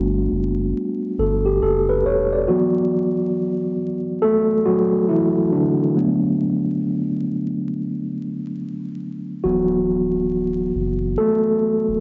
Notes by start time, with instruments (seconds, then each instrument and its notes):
Already playing: sub bass G1, tine electric piano G3 A3 B3 D4 F#4
0.32 sub bass F#1
1.18 sub bass G1, tine electric piano A4
1.46 tine electric piano G4
1.62 sub bass F#1, tine electric piano A4
1.89 tine electric piano B4
2.05 sub bass E1, tine electric piano C#5
2.33 tine electric piano D5
2.48 tine electric piano E3 F#3 B3 F#4
4.22 tine electric piano A3 A4
4.66 tine electric piano F#3 F#4
5.09 tine electric piano E3 E4
5.52 tine electric piano D3 D4
5.96 tine electric piano F#3 A3 B3
9.44 sub bass D1, tine electric piano E3 F#3 B3 F#4
10.75 sub bass F#1
11.18 tine electric piano A3 A4
11.88 sub bass D1